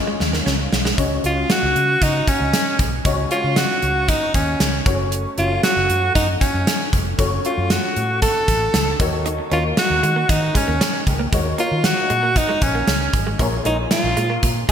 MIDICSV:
0, 0, Header, 1, 7, 480
1, 0, Start_track
1, 0, Key_signature, -5, "major"
1, 0, Tempo, 517241
1, 910, Time_signature, 4, 2, 24, 8
1, 13659, End_track
2, 0, Start_track
2, 0, Title_t, "Alto saxophone"
2, 0, Program_c, 0, 65
2, 1168, Note_on_c, 0, 65, 88
2, 1407, Note_on_c, 0, 66, 95
2, 1420, Note_off_c, 0, 65, 0
2, 1882, Note_on_c, 0, 63, 94
2, 1896, Note_off_c, 0, 66, 0
2, 2119, Note_on_c, 0, 61, 80
2, 2133, Note_off_c, 0, 63, 0
2, 2595, Note_off_c, 0, 61, 0
2, 3075, Note_on_c, 0, 65, 89
2, 3316, Note_on_c, 0, 66, 92
2, 3330, Note_off_c, 0, 65, 0
2, 3792, Note_on_c, 0, 63, 91
2, 3806, Note_off_c, 0, 66, 0
2, 4029, Note_off_c, 0, 63, 0
2, 4035, Note_on_c, 0, 61, 74
2, 4479, Note_off_c, 0, 61, 0
2, 4997, Note_on_c, 0, 65, 93
2, 5217, Note_off_c, 0, 65, 0
2, 5231, Note_on_c, 0, 66, 93
2, 5677, Note_off_c, 0, 66, 0
2, 5710, Note_on_c, 0, 63, 88
2, 5818, Note_off_c, 0, 63, 0
2, 5946, Note_on_c, 0, 61, 74
2, 6395, Note_off_c, 0, 61, 0
2, 6917, Note_on_c, 0, 65, 74
2, 7153, Note_on_c, 0, 66, 77
2, 7167, Note_off_c, 0, 65, 0
2, 7624, Note_off_c, 0, 66, 0
2, 7630, Note_on_c, 0, 69, 97
2, 8313, Note_off_c, 0, 69, 0
2, 8841, Note_on_c, 0, 65, 89
2, 8947, Note_off_c, 0, 65, 0
2, 9082, Note_on_c, 0, 66, 99
2, 9557, Note_on_c, 0, 63, 89
2, 9571, Note_off_c, 0, 66, 0
2, 9794, Note_off_c, 0, 63, 0
2, 9803, Note_on_c, 0, 61, 73
2, 10244, Note_off_c, 0, 61, 0
2, 10764, Note_on_c, 0, 65, 93
2, 10999, Note_on_c, 0, 66, 92
2, 11013, Note_off_c, 0, 65, 0
2, 11482, Note_on_c, 0, 63, 95
2, 11496, Note_off_c, 0, 66, 0
2, 11717, Note_on_c, 0, 61, 80
2, 11731, Note_off_c, 0, 63, 0
2, 12194, Note_off_c, 0, 61, 0
2, 12677, Note_on_c, 0, 63, 86
2, 12784, Note_off_c, 0, 63, 0
2, 12916, Note_on_c, 0, 65, 99
2, 13360, Note_off_c, 0, 65, 0
2, 13659, End_track
3, 0, Start_track
3, 0, Title_t, "Grand piano"
3, 0, Program_c, 1, 0
3, 0, Control_c, 1, 64, 127
3, 0, Note_on_c, 1, 49, 75
3, 0, Note_on_c, 1, 56, 79
3, 0, Note_on_c, 1, 61, 72
3, 0, Note_on_c, 1, 65, 72
3, 0, Note_on_c, 1, 68, 90
3, 0, Note_on_c, 1, 73, 93
3, 442, Note_off_c, 1, 56, 0
3, 444, Note_off_c, 1, 61, 0
3, 446, Note_off_c, 1, 65, 0
3, 448, Note_off_c, 1, 73, 0
3, 905, Note_on_c, 1, 56, 81
3, 908, Note_on_c, 1, 61, 72
3, 909, Note_off_c, 1, 49, 0
3, 909, Note_on_c, 1, 49, 67
3, 911, Note_on_c, 1, 66, 70
3, 914, Note_on_c, 1, 73, 85
3, 923, Control_c, 1, 64, 0
3, 931, Note_off_c, 1, 68, 0
3, 1091, Note_off_c, 1, 56, 0
3, 1092, Control_c, 1, 64, 127
3, 1093, Note_off_c, 1, 61, 0
3, 1094, Note_off_c, 1, 66, 0
3, 1096, Note_off_c, 1, 73, 0
3, 1145, Note_on_c, 1, 56, 70
3, 1150, Note_on_c, 1, 61, 60
3, 1152, Note_on_c, 1, 66, 60
3, 1155, Note_on_c, 1, 73, 74
3, 1593, Note_off_c, 1, 49, 0
3, 1883, Note_off_c, 1, 56, 0
3, 1885, Note_off_c, 1, 61, 0
3, 1886, Note_off_c, 1, 66, 0
3, 1887, Note_off_c, 1, 73, 0
3, 2830, Note_on_c, 1, 56, 76
3, 2832, Note_on_c, 1, 61, 73
3, 2835, Note_on_c, 1, 49, 69
3, 2835, Note_on_c, 1, 66, 75
3, 2840, Note_on_c, 1, 73, 88
3, 3014, Note_off_c, 1, 56, 0
3, 3015, Note_off_c, 1, 61, 0
3, 3016, Note_off_c, 1, 66, 0
3, 3019, Note_off_c, 1, 73, 0
3, 3066, Note_on_c, 1, 56, 72
3, 3070, Note_on_c, 1, 61, 64
3, 3072, Note_on_c, 1, 66, 65
3, 3077, Note_on_c, 1, 73, 77
3, 3516, Note_off_c, 1, 49, 0
3, 3803, Note_off_c, 1, 56, 0
3, 3805, Note_off_c, 1, 61, 0
3, 3806, Note_off_c, 1, 66, 0
3, 3809, Note_off_c, 1, 73, 0
3, 4506, Note_on_c, 1, 57, 72
3, 4510, Note_on_c, 1, 61, 64
3, 4514, Note_on_c, 1, 66, 67
3, 4516, Note_on_c, 1, 73, 78
3, 4522, Control_c, 1, 64, 0
3, 4692, Control_c, 1, 64, 127
3, 4892, Note_off_c, 1, 57, 0
3, 4894, Note_off_c, 1, 61, 0
3, 4896, Note_off_c, 1, 66, 0
3, 4897, Note_off_c, 1, 73, 0
3, 4987, Note_on_c, 1, 57, 69
3, 4991, Note_on_c, 1, 61, 62
3, 4995, Note_on_c, 1, 66, 65
3, 4998, Note_on_c, 1, 73, 76
3, 5723, Note_off_c, 1, 57, 0
3, 5725, Note_off_c, 1, 61, 0
3, 5727, Note_off_c, 1, 66, 0
3, 5729, Note_off_c, 1, 73, 0
3, 6665, Note_on_c, 1, 57, 79
3, 6667, Note_on_c, 1, 61, 72
3, 6671, Note_on_c, 1, 66, 75
3, 6675, Note_on_c, 1, 73, 89
3, 6851, Note_off_c, 1, 57, 0
3, 6853, Note_off_c, 1, 61, 0
3, 6854, Note_off_c, 1, 66, 0
3, 6857, Note_off_c, 1, 73, 0
3, 6907, Note_on_c, 1, 57, 71
3, 6911, Note_on_c, 1, 61, 61
3, 6915, Note_on_c, 1, 66, 61
3, 6917, Note_on_c, 1, 73, 75
3, 7644, Note_off_c, 1, 57, 0
3, 7646, Note_off_c, 1, 61, 0
3, 7647, Note_off_c, 1, 66, 0
3, 7648, Note_off_c, 1, 73, 0
3, 8346, Note_on_c, 1, 58, 81
3, 8350, Note_on_c, 1, 63, 80
3, 8352, Note_on_c, 1, 51, 69
3, 8354, Note_on_c, 1, 66, 78
3, 8357, Note_on_c, 1, 73, 92
3, 8360, Control_c, 1, 64, 0
3, 8519, Control_c, 1, 64, 127
3, 8732, Note_off_c, 1, 58, 0
3, 8734, Note_off_c, 1, 63, 0
3, 8736, Note_off_c, 1, 66, 0
3, 8738, Note_off_c, 1, 73, 0
3, 8824, Note_on_c, 1, 58, 69
3, 8829, Note_on_c, 1, 63, 63
3, 8832, Note_on_c, 1, 66, 61
3, 8836, Note_on_c, 1, 73, 72
3, 9034, Note_off_c, 1, 51, 0
3, 9562, Note_off_c, 1, 58, 0
3, 9565, Note_off_c, 1, 63, 0
3, 9566, Note_off_c, 1, 66, 0
3, 9568, Note_off_c, 1, 73, 0
3, 10271, Note_on_c, 1, 51, 57
3, 10510, Note_on_c, 1, 58, 81
3, 10514, Note_on_c, 1, 63, 74
3, 10517, Note_on_c, 1, 66, 71
3, 10519, Note_on_c, 1, 73, 83
3, 10694, Note_off_c, 1, 58, 0
3, 10696, Note_off_c, 1, 63, 0
3, 10697, Note_off_c, 1, 66, 0
3, 10699, Note_off_c, 1, 73, 0
3, 10746, Note_on_c, 1, 58, 70
3, 10750, Note_on_c, 1, 63, 62
3, 10754, Note_on_c, 1, 66, 66
3, 10757, Note_on_c, 1, 73, 73
3, 10953, Note_off_c, 1, 51, 0
3, 11483, Note_off_c, 1, 58, 0
3, 11485, Note_off_c, 1, 63, 0
3, 11487, Note_off_c, 1, 66, 0
3, 11489, Note_off_c, 1, 73, 0
3, 12425, Note_on_c, 1, 58, 82
3, 12428, Note_on_c, 1, 65, 73
3, 12430, Note_on_c, 1, 46, 74
3, 12432, Note_on_c, 1, 68, 75
3, 12437, Note_on_c, 1, 73, 89
3, 12444, Control_c, 1, 64, 0
3, 12603, Control_c, 1, 64, 127
3, 12611, Note_off_c, 1, 58, 0
3, 12613, Note_off_c, 1, 65, 0
3, 12615, Note_off_c, 1, 68, 0
3, 12617, Note_off_c, 1, 73, 0
3, 12665, Note_on_c, 1, 58, 72
3, 12668, Note_on_c, 1, 65, 65
3, 12672, Note_on_c, 1, 68, 66
3, 12675, Note_on_c, 1, 73, 76
3, 13113, Note_off_c, 1, 46, 0
3, 13402, Note_off_c, 1, 58, 0
3, 13404, Note_off_c, 1, 65, 0
3, 13406, Note_off_c, 1, 68, 0
3, 13408, Note_off_c, 1, 73, 0
3, 13659, End_track
4, 0, Start_track
4, 0, Title_t, "Clean electric guitar"
4, 0, Program_c, 2, 27
4, 69, Note_on_c, 2, 56, 71
4, 139, Note_off_c, 2, 56, 0
4, 308, Note_on_c, 2, 58, 53
4, 378, Note_off_c, 2, 58, 0
4, 428, Note_on_c, 2, 61, 70
4, 498, Note_off_c, 2, 61, 0
4, 791, Note_on_c, 2, 56, 71
4, 860, Note_off_c, 2, 56, 0
4, 8591, Note_on_c, 2, 63, 74
4, 8660, Note_off_c, 2, 63, 0
4, 8830, Note_on_c, 2, 61, 67
4, 8900, Note_off_c, 2, 61, 0
4, 9309, Note_on_c, 2, 56, 75
4, 9379, Note_off_c, 2, 56, 0
4, 9430, Note_on_c, 2, 58, 77
4, 9500, Note_off_c, 2, 58, 0
4, 9787, Note_on_c, 2, 56, 76
4, 9857, Note_off_c, 2, 56, 0
4, 9908, Note_on_c, 2, 58, 71
4, 9978, Note_off_c, 2, 58, 0
4, 10029, Note_on_c, 2, 61, 74
4, 10099, Note_off_c, 2, 61, 0
4, 10388, Note_on_c, 2, 58, 68
4, 10458, Note_off_c, 2, 58, 0
4, 10509, Note_on_c, 2, 56, 71
4, 10579, Note_off_c, 2, 56, 0
4, 10749, Note_on_c, 2, 58, 68
4, 10819, Note_off_c, 2, 58, 0
4, 11230, Note_on_c, 2, 56, 74
4, 11299, Note_off_c, 2, 56, 0
4, 11349, Note_on_c, 2, 58, 58
4, 11419, Note_off_c, 2, 58, 0
4, 11589, Note_on_c, 2, 56, 77
4, 11659, Note_off_c, 2, 56, 0
4, 11832, Note_on_c, 2, 58, 57
4, 11901, Note_off_c, 2, 58, 0
4, 11954, Note_on_c, 2, 61, 73
4, 12022, Note_off_c, 2, 61, 0
4, 12312, Note_on_c, 2, 56, 78
4, 12381, Note_off_c, 2, 56, 0
4, 12433, Note_on_c, 2, 58, 77
4, 12502, Note_off_c, 2, 58, 0
4, 12673, Note_on_c, 2, 56, 65
4, 12742, Note_off_c, 2, 56, 0
4, 13149, Note_on_c, 2, 56, 77
4, 13219, Note_off_c, 2, 56, 0
4, 13268, Note_on_c, 2, 58, 79
4, 13338, Note_off_c, 2, 58, 0
4, 13630, Note_on_c, 2, 56, 74
4, 13659, Note_off_c, 2, 56, 0
4, 13659, End_track
5, 0, Start_track
5, 0, Title_t, "Fingered electric bass"
5, 0, Program_c, 3, 33
5, 190, Note_on_c, 3, 39, 81
5, 370, Note_off_c, 3, 39, 0
5, 429, Note_on_c, 3, 37, 86
5, 610, Note_off_c, 3, 37, 0
5, 669, Note_on_c, 3, 35, 72
5, 849, Note_off_c, 3, 35, 0
5, 910, Note_on_c, 3, 37, 107
5, 1090, Note_off_c, 3, 37, 0
5, 1150, Note_on_c, 3, 37, 90
5, 1330, Note_off_c, 3, 37, 0
5, 1511, Note_on_c, 3, 37, 85
5, 1601, Note_off_c, 3, 37, 0
5, 1631, Note_on_c, 3, 49, 92
5, 1811, Note_off_c, 3, 49, 0
5, 1871, Note_on_c, 3, 49, 93
5, 2051, Note_off_c, 3, 49, 0
5, 2231, Note_on_c, 3, 37, 84
5, 2321, Note_off_c, 3, 37, 0
5, 2591, Note_on_c, 3, 35, 77
5, 2771, Note_off_c, 3, 35, 0
5, 2831, Note_on_c, 3, 37, 97
5, 3011, Note_off_c, 3, 37, 0
5, 3192, Note_on_c, 3, 49, 77
5, 3371, Note_off_c, 3, 49, 0
5, 3550, Note_on_c, 3, 37, 86
5, 3820, Note_off_c, 3, 37, 0
5, 4030, Note_on_c, 3, 39, 80
5, 4210, Note_off_c, 3, 39, 0
5, 4269, Note_on_c, 3, 37, 82
5, 4449, Note_off_c, 3, 37, 0
5, 4511, Note_on_c, 3, 30, 89
5, 4871, Note_off_c, 3, 30, 0
5, 4990, Note_on_c, 3, 30, 91
5, 5170, Note_off_c, 3, 30, 0
5, 5350, Note_on_c, 3, 30, 85
5, 5440, Note_off_c, 3, 30, 0
5, 5471, Note_on_c, 3, 42, 88
5, 5651, Note_off_c, 3, 42, 0
5, 5711, Note_on_c, 3, 42, 96
5, 5891, Note_off_c, 3, 42, 0
5, 6071, Note_on_c, 3, 42, 80
5, 6161, Note_off_c, 3, 42, 0
5, 6432, Note_on_c, 3, 29, 90
5, 6611, Note_off_c, 3, 29, 0
5, 6669, Note_on_c, 3, 30, 99
5, 6850, Note_off_c, 3, 30, 0
5, 7031, Note_on_c, 3, 42, 84
5, 7211, Note_off_c, 3, 42, 0
5, 7391, Note_on_c, 3, 45, 83
5, 7660, Note_off_c, 3, 45, 0
5, 7871, Note_on_c, 3, 33, 82
5, 8050, Note_off_c, 3, 33, 0
5, 8111, Note_on_c, 3, 37, 89
5, 8290, Note_off_c, 3, 37, 0
5, 8350, Note_on_c, 3, 39, 75
5, 8710, Note_off_c, 3, 39, 0
5, 8830, Note_on_c, 3, 39, 90
5, 9010, Note_off_c, 3, 39, 0
5, 9189, Note_on_c, 3, 39, 87
5, 9279, Note_off_c, 3, 39, 0
5, 9310, Note_on_c, 3, 51, 85
5, 9490, Note_off_c, 3, 51, 0
5, 9551, Note_on_c, 3, 51, 90
5, 9731, Note_off_c, 3, 51, 0
5, 9911, Note_on_c, 3, 39, 79
5, 10001, Note_off_c, 3, 39, 0
5, 10271, Note_on_c, 3, 37, 77
5, 10451, Note_off_c, 3, 37, 0
5, 10510, Note_on_c, 3, 39, 103
5, 10690, Note_off_c, 3, 39, 0
5, 10871, Note_on_c, 3, 51, 89
5, 11051, Note_off_c, 3, 51, 0
5, 11231, Note_on_c, 3, 46, 79
5, 11501, Note_off_c, 3, 46, 0
5, 11710, Note_on_c, 3, 34, 82
5, 11890, Note_off_c, 3, 34, 0
5, 11948, Note_on_c, 3, 37, 89
5, 12129, Note_off_c, 3, 37, 0
5, 12190, Note_on_c, 3, 32, 80
5, 12370, Note_off_c, 3, 32, 0
5, 12430, Note_on_c, 3, 34, 96
5, 12610, Note_off_c, 3, 34, 0
5, 12668, Note_on_c, 3, 34, 93
5, 12849, Note_off_c, 3, 34, 0
5, 13028, Note_on_c, 3, 34, 88
5, 13119, Note_off_c, 3, 34, 0
5, 13148, Note_on_c, 3, 46, 92
5, 13329, Note_off_c, 3, 46, 0
5, 13390, Note_on_c, 3, 46, 98
5, 13570, Note_off_c, 3, 46, 0
5, 13659, End_track
6, 0, Start_track
6, 0, Title_t, "Muted clean electric guitar strokes"
6, 190, Note_on_c, 9, 29, 43
6, 283, Note_off_c, 9, 29, 0
6, 551, Note_on_c, 9, 29, 41
6, 644, Note_off_c, 9, 29, 0
6, 8710, Note_on_c, 9, 29, 43
6, 8803, Note_off_c, 9, 29, 0
6, 9069, Note_on_c, 9, 29, 38
6, 9162, Note_off_c, 9, 29, 0
6, 9549, Note_on_c, 9, 29, 38
6, 9642, Note_off_c, 9, 29, 0
6, 10148, Note_on_c, 9, 29, 44
6, 10240, Note_off_c, 9, 29, 0
6, 10631, Note_on_c, 9, 29, 41
6, 10723, Note_off_c, 9, 29, 0
6, 10987, Note_on_c, 9, 29, 39
6, 11080, Note_off_c, 9, 29, 0
6, 11711, Note_on_c, 9, 29, 43
6, 11803, Note_off_c, 9, 29, 0
6, 12073, Note_on_c, 9, 29, 45
6, 12165, Note_off_c, 9, 29, 0
6, 12551, Note_on_c, 9, 29, 45
6, 12644, Note_off_c, 9, 29, 0
6, 12910, Note_on_c, 9, 29, 39
6, 13003, Note_off_c, 9, 29, 0
6, 13393, Note_on_c, 9, 29, 38
6, 13486, Note_off_c, 9, 29, 0
6, 13659, End_track
7, 0, Start_track
7, 0, Title_t, "Drums"
7, 188, Note_on_c, 9, 38, 61
7, 281, Note_off_c, 9, 38, 0
7, 309, Note_on_c, 9, 38, 55
7, 402, Note_off_c, 9, 38, 0
7, 430, Note_on_c, 9, 38, 72
7, 523, Note_off_c, 9, 38, 0
7, 673, Note_on_c, 9, 38, 90
7, 766, Note_off_c, 9, 38, 0
7, 792, Note_on_c, 9, 38, 77
7, 885, Note_off_c, 9, 38, 0
7, 911, Note_on_c, 9, 36, 95
7, 911, Note_on_c, 9, 42, 74
7, 1003, Note_off_c, 9, 36, 0
7, 1003, Note_off_c, 9, 42, 0
7, 1151, Note_on_c, 9, 42, 67
7, 1244, Note_off_c, 9, 42, 0
7, 1389, Note_on_c, 9, 38, 108
7, 1391, Note_on_c, 9, 42, 78
7, 1482, Note_off_c, 9, 38, 0
7, 1483, Note_off_c, 9, 42, 0
7, 1633, Note_on_c, 9, 42, 64
7, 1725, Note_off_c, 9, 42, 0
7, 1871, Note_on_c, 9, 36, 83
7, 1871, Note_on_c, 9, 42, 75
7, 1964, Note_off_c, 9, 36, 0
7, 1964, Note_off_c, 9, 42, 0
7, 2110, Note_on_c, 9, 42, 65
7, 2111, Note_on_c, 9, 36, 82
7, 2203, Note_off_c, 9, 42, 0
7, 2204, Note_off_c, 9, 36, 0
7, 2352, Note_on_c, 9, 38, 96
7, 2353, Note_on_c, 9, 42, 89
7, 2445, Note_off_c, 9, 38, 0
7, 2446, Note_off_c, 9, 42, 0
7, 2590, Note_on_c, 9, 42, 63
7, 2591, Note_on_c, 9, 36, 83
7, 2683, Note_off_c, 9, 42, 0
7, 2684, Note_off_c, 9, 36, 0
7, 2831, Note_on_c, 9, 36, 101
7, 2831, Note_on_c, 9, 42, 76
7, 2924, Note_off_c, 9, 36, 0
7, 2924, Note_off_c, 9, 42, 0
7, 3070, Note_on_c, 9, 42, 70
7, 3163, Note_off_c, 9, 42, 0
7, 3307, Note_on_c, 9, 38, 104
7, 3308, Note_on_c, 9, 42, 80
7, 3399, Note_off_c, 9, 38, 0
7, 3401, Note_off_c, 9, 42, 0
7, 3549, Note_on_c, 9, 42, 61
7, 3641, Note_off_c, 9, 42, 0
7, 3789, Note_on_c, 9, 42, 76
7, 3791, Note_on_c, 9, 36, 83
7, 3882, Note_off_c, 9, 42, 0
7, 3884, Note_off_c, 9, 36, 0
7, 4031, Note_on_c, 9, 36, 79
7, 4031, Note_on_c, 9, 42, 62
7, 4124, Note_off_c, 9, 36, 0
7, 4124, Note_off_c, 9, 42, 0
7, 4271, Note_on_c, 9, 38, 93
7, 4272, Note_on_c, 9, 42, 89
7, 4363, Note_off_c, 9, 38, 0
7, 4365, Note_off_c, 9, 42, 0
7, 4511, Note_on_c, 9, 36, 101
7, 4511, Note_on_c, 9, 42, 66
7, 4603, Note_off_c, 9, 36, 0
7, 4603, Note_off_c, 9, 42, 0
7, 4751, Note_on_c, 9, 42, 78
7, 4844, Note_off_c, 9, 42, 0
7, 4989, Note_on_c, 9, 42, 66
7, 5082, Note_off_c, 9, 42, 0
7, 5228, Note_on_c, 9, 38, 104
7, 5230, Note_on_c, 9, 42, 78
7, 5321, Note_off_c, 9, 38, 0
7, 5323, Note_off_c, 9, 42, 0
7, 5471, Note_on_c, 9, 42, 61
7, 5564, Note_off_c, 9, 42, 0
7, 5711, Note_on_c, 9, 36, 76
7, 5711, Note_on_c, 9, 42, 74
7, 5804, Note_off_c, 9, 36, 0
7, 5804, Note_off_c, 9, 42, 0
7, 5951, Note_on_c, 9, 36, 81
7, 5951, Note_on_c, 9, 42, 65
7, 6044, Note_off_c, 9, 36, 0
7, 6044, Note_off_c, 9, 42, 0
7, 6192, Note_on_c, 9, 38, 100
7, 6193, Note_on_c, 9, 42, 84
7, 6285, Note_off_c, 9, 38, 0
7, 6286, Note_off_c, 9, 42, 0
7, 6431, Note_on_c, 9, 36, 84
7, 6432, Note_on_c, 9, 42, 64
7, 6524, Note_off_c, 9, 36, 0
7, 6525, Note_off_c, 9, 42, 0
7, 6668, Note_on_c, 9, 42, 77
7, 6670, Note_on_c, 9, 36, 103
7, 6761, Note_off_c, 9, 42, 0
7, 6763, Note_off_c, 9, 36, 0
7, 6911, Note_on_c, 9, 42, 67
7, 7004, Note_off_c, 9, 42, 0
7, 7147, Note_on_c, 9, 38, 105
7, 7149, Note_on_c, 9, 42, 77
7, 7240, Note_off_c, 9, 38, 0
7, 7241, Note_off_c, 9, 42, 0
7, 7391, Note_on_c, 9, 42, 63
7, 7483, Note_off_c, 9, 42, 0
7, 7628, Note_on_c, 9, 42, 79
7, 7630, Note_on_c, 9, 36, 81
7, 7721, Note_off_c, 9, 42, 0
7, 7723, Note_off_c, 9, 36, 0
7, 7869, Note_on_c, 9, 42, 65
7, 7871, Note_on_c, 9, 36, 79
7, 7962, Note_off_c, 9, 42, 0
7, 7963, Note_off_c, 9, 36, 0
7, 8109, Note_on_c, 9, 38, 97
7, 8111, Note_on_c, 9, 42, 87
7, 8202, Note_off_c, 9, 38, 0
7, 8203, Note_off_c, 9, 42, 0
7, 8349, Note_on_c, 9, 42, 69
7, 8350, Note_on_c, 9, 36, 96
7, 8442, Note_off_c, 9, 42, 0
7, 8443, Note_off_c, 9, 36, 0
7, 8591, Note_on_c, 9, 42, 72
7, 8683, Note_off_c, 9, 42, 0
7, 8830, Note_on_c, 9, 42, 70
7, 8923, Note_off_c, 9, 42, 0
7, 9068, Note_on_c, 9, 38, 108
7, 9070, Note_on_c, 9, 42, 84
7, 9161, Note_off_c, 9, 38, 0
7, 9163, Note_off_c, 9, 42, 0
7, 9313, Note_on_c, 9, 42, 63
7, 9405, Note_off_c, 9, 42, 0
7, 9551, Note_on_c, 9, 36, 81
7, 9551, Note_on_c, 9, 42, 77
7, 9644, Note_off_c, 9, 36, 0
7, 9644, Note_off_c, 9, 42, 0
7, 9791, Note_on_c, 9, 36, 78
7, 9791, Note_on_c, 9, 42, 63
7, 9884, Note_off_c, 9, 36, 0
7, 9884, Note_off_c, 9, 42, 0
7, 10033, Note_on_c, 9, 38, 96
7, 10034, Note_on_c, 9, 42, 91
7, 10125, Note_off_c, 9, 38, 0
7, 10127, Note_off_c, 9, 42, 0
7, 10271, Note_on_c, 9, 36, 81
7, 10271, Note_on_c, 9, 42, 66
7, 10364, Note_off_c, 9, 36, 0
7, 10364, Note_off_c, 9, 42, 0
7, 10510, Note_on_c, 9, 42, 79
7, 10511, Note_on_c, 9, 36, 107
7, 10603, Note_off_c, 9, 36, 0
7, 10603, Note_off_c, 9, 42, 0
7, 10750, Note_on_c, 9, 42, 68
7, 10843, Note_off_c, 9, 42, 0
7, 10987, Note_on_c, 9, 38, 107
7, 10989, Note_on_c, 9, 42, 81
7, 11080, Note_off_c, 9, 38, 0
7, 11082, Note_off_c, 9, 42, 0
7, 11228, Note_on_c, 9, 42, 63
7, 11321, Note_off_c, 9, 42, 0
7, 11468, Note_on_c, 9, 42, 73
7, 11470, Note_on_c, 9, 36, 77
7, 11561, Note_off_c, 9, 42, 0
7, 11563, Note_off_c, 9, 36, 0
7, 11707, Note_on_c, 9, 42, 67
7, 11710, Note_on_c, 9, 36, 85
7, 11799, Note_off_c, 9, 42, 0
7, 11802, Note_off_c, 9, 36, 0
7, 11948, Note_on_c, 9, 38, 95
7, 11949, Note_on_c, 9, 42, 87
7, 12040, Note_off_c, 9, 38, 0
7, 12041, Note_off_c, 9, 42, 0
7, 12187, Note_on_c, 9, 42, 73
7, 12189, Note_on_c, 9, 36, 89
7, 12280, Note_off_c, 9, 42, 0
7, 12282, Note_off_c, 9, 36, 0
7, 12429, Note_on_c, 9, 42, 75
7, 12430, Note_on_c, 9, 36, 103
7, 12522, Note_off_c, 9, 36, 0
7, 12522, Note_off_c, 9, 42, 0
7, 12669, Note_on_c, 9, 42, 69
7, 12761, Note_off_c, 9, 42, 0
7, 12907, Note_on_c, 9, 38, 106
7, 12909, Note_on_c, 9, 42, 81
7, 13000, Note_off_c, 9, 38, 0
7, 13001, Note_off_c, 9, 42, 0
7, 13149, Note_on_c, 9, 42, 62
7, 13242, Note_off_c, 9, 42, 0
7, 13389, Note_on_c, 9, 42, 78
7, 13391, Note_on_c, 9, 36, 83
7, 13482, Note_off_c, 9, 42, 0
7, 13483, Note_off_c, 9, 36, 0
7, 13630, Note_on_c, 9, 42, 66
7, 13631, Note_on_c, 9, 36, 80
7, 13659, Note_off_c, 9, 36, 0
7, 13659, Note_off_c, 9, 42, 0
7, 13659, End_track
0, 0, End_of_file